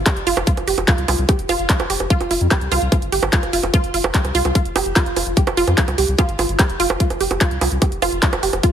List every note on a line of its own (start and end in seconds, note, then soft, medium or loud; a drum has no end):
0.06 0.09 G4 medium
0.06 kick loud
0.06 clap loud
0.06 closed hi-hat loud
0.06 high bongo soft
0.16 0.23 F1 medium
0.16 closed hi-hat soft
0.27 0.33 F1 loud
0.27 0.31 F4 loud
0.27 open hi-hat loud
0.37 0.43 F1 medium
0.37 closed hi-hat soft
0.37 high bongo medium
0.47 0.54 F4 medium
0.47 kick loud
0.47 closed hi-hat medium
0.57 0.64 F1 medium
0.57 closed hi-hat soft
0.57 high bongo soft
0.67 0.74 F1 loud
0.67 0.70 G4 medium
0.67 open hi-hat loud
0.78 0.84 F1 medium
0.78 closed hi-hat soft
0.78 high bongo soft
0.88 0.92 F4 loud
0.88 kick loud
0.88 clap loud
0.88 closed hi-hat medium
0.98 1.05 C2 medium
0.98 closed hi-hat soft
1.08 1.15 C2 medium
1.08 1.15 F4 medium
1.08 open hi-hat loud
1.08 high bongo medium
1.19 1.25 C2 medium
1.19 closed hi-hat soft
1.29 1.31 G4 medium
1.29 kick loud
1.29 closed hi-hat medium
1.29 high bongo soft
1.39 1.45 F1 medium
1.39 closed hi-hat soft
1.49 1.56 F1 loud
1.49 1.54 F4 loud
1.49 open hi-hat loud
1.49 high bongo soft
1.59 1.66 F1 medium
1.59 closed hi-hat soft
1.70 1.76 F4 medium
1.70 kick loud
1.70 clap loud
1.70 closed hi-hat loud
1.80 1.86 F1 medium
1.80 closed hi-hat soft
1.80 high bongo medium
1.90 1.96 F1 loud
1.90 1.93 G4 medium
1.90 open hi-hat loud
2.00 2.07 F1 medium
2.00 high bongo soft
2.10 2.15 F4 loud
2.10 kick loud
2.10 closed hi-hat medium
2.21 2.27 F1 medium
2.21 closed hi-hat soft
2.21 high bongo soft
2.31 2.37 F1 loud
2.31 2.38 F4 medium
2.31 open hi-hat loud
2.41 2.47 F2 medium
2.41 closed hi-hat soft
2.51 2.54 G4 medium
2.51 kick loud
2.51 clap loud
2.51 closed hi-hat medium
2.51 high bongo medium
2.61 2.68 C2 medium
2.61 closed hi-hat soft
2.72 2.78 C2 loud
2.72 2.76 F4 loud
2.72 open hi-hat loud
2.72 high bongo soft
2.82 2.88 C2 medium
2.82 closed hi-hat soft
2.92 2.99 F4 medium
2.92 kick loud
2.92 closed hi-hat medium
2.92 high bongo soft
3.02 3.09 G1 medium
3.02 closed hi-hat soft
3.12 3.19 G1 medium
3.12 3.15 G4 medium
3.12 open hi-hat loud
3.23 3.29 G1 medium
3.23 closed hi-hat soft
3.23 high bongo medium
3.33 3.37 F4 loud
3.33 kick loud
3.33 clap loud
3.33 closed hi-hat loud
3.43 3.49 F1 medium
3.43 closed hi-hat soft
3.43 high bongo soft
3.53 3.60 F1 loud
3.53 3.60 F4 medium
3.53 open hi-hat loud
3.63 3.70 F1 medium
3.63 closed hi-hat soft
3.63 high bongo soft
3.74 3.78 F4 loud
3.74 kick loud
3.74 closed hi-hat medium
3.74 high bongo soft
3.84 3.90 F1 medium
3.84 closed hi-hat soft
3.94 4.01 F1 loud
3.94 4.01 F4 medium
3.94 open hi-hat loud
4.04 4.11 F1 medium
4.04 closed hi-hat soft
4.04 high bongo medium
4.14 4.17 G4 medium
4.14 kick loud
4.14 clap loud
4.14 closed hi-hat medium
4.25 4.31 C2 medium
4.25 closed hi-hat soft
4.25 high bongo soft
4.35 4.41 C2 loud
4.35 4.39 F4 loud
4.35 open hi-hat loud
4.45 4.52 C2 medium
4.45 closed hi-hat soft
4.45 high bongo soft
4.55 4.62 F4 medium
4.55 kick loud
4.55 closed hi-hat medium
4.65 4.72 F1 medium
4.65 closed hi-hat soft
4.76 4.82 F1 loud
4.76 4.78 G4 medium
4.76 open hi-hat loud
4.76 high bongo medium
4.86 4.92 F1 medium
4.86 closed hi-hat soft
4.96 5.01 F4 loud
4.96 kick loud
4.96 clap loud
4.96 closed hi-hat loud
4.96 high bongo soft
5.06 5.13 F1 medium
5.06 closed hi-hat soft
5.16 5.23 F1 loud
5.16 5.23 F4 medium
5.16 open hi-hat loud
5.16 high bongo soft
5.27 5.33 F1 medium
5.27 closed hi-hat soft
5.37 5.40 G4 medium
5.37 kick loud
5.37 closed hi-hat loud
5.47 5.54 F1 medium
5.47 closed hi-hat soft
5.47 high bongo medium
5.57 5.64 F1 loud
5.57 5.62 F4 loud
5.57 open hi-hat loud
5.67 5.74 F2 medium
5.67 closed hi-hat soft
5.67 high bongo soft
5.78 5.85 F4 medium
5.78 kick loud
5.78 clap loud
5.78 closed hi-hat medium
5.88 5.94 C2 medium
5.88 closed hi-hat soft
5.88 high bongo soft
5.98 6.05 C2 loud
5.98 6.01 G4 medium
5.98 open hi-hat loud
6.08 6.15 C2 medium
6.08 closed hi-hat soft
6.19 6.23 F4 loud
6.19 kick loud
6.19 closed hi-hat medium
6.19 high bongo medium
6.29 6.35 G1 medium
6.29 closed hi-hat soft
6.39 6.45 G1 loud
6.39 6.46 F4 medium
6.39 open hi-hat loud
6.39 high bongo soft
6.49 6.56 G1 medium
6.49 closed hi-hat soft
6.59 6.62 G4 medium
6.59 kick loud
6.59 clap loud
6.59 closed hi-hat loud
6.59 high bongo soft
6.70 6.76 F1 medium
6.70 closed hi-hat soft
6.80 6.86 F1 loud
6.80 6.84 F4 loud
6.80 open hi-hat loud
6.90 6.96 F1 medium
6.90 high bongo medium
7.00 7.07 F4 medium
7.00 kick loud
7.00 closed hi-hat loud
7.10 7.17 F1 medium
7.10 closed hi-hat soft
7.10 high bongo soft
7.21 7.27 F1 loud
7.21 7.23 G4 medium
7.21 open hi-hat loud
7.31 7.37 F1 loud
7.31 closed hi-hat soft
7.31 high bongo soft
7.41 7.46 F4 loud
7.41 kick loud
7.41 clap loud
7.41 closed hi-hat medium
7.51 7.58 C2 medium
7.51 closed hi-hat soft
7.61 7.68 C2 loud
7.61 7.68 F4 medium
7.61 open hi-hat loud
7.61 high bongo medium
7.72 7.78 C2 medium
7.72 closed hi-hat soft
7.82 7.85 G4 medium
7.82 kick loud
7.82 closed hi-hat loud
7.82 high bongo soft
7.92 7.98 F1 medium
7.92 closed hi-hat soft
8.02 8.09 F1 loud
8.02 8.07 F4 loud
8.02 open hi-hat loud
8.02 high bongo soft
8.12 8.19 F1 medium
8.12 closed hi-hat soft
8.23 8.29 F4 medium
8.23 kick loud
8.23 clap loud
8.23 closed hi-hat loud
8.33 8.39 F1 medium
8.33 closed hi-hat soft
8.33 high bongo medium
8.43 8.49 F1 loud
8.43 8.46 G4 medium
8.43 open hi-hat loud
8.53 8.60 F1 medium
8.53 closed hi-hat soft
8.53 high bongo soft
8.63 8.68 F4 loud
8.63 kick loud
8.63 closed hi-hat loud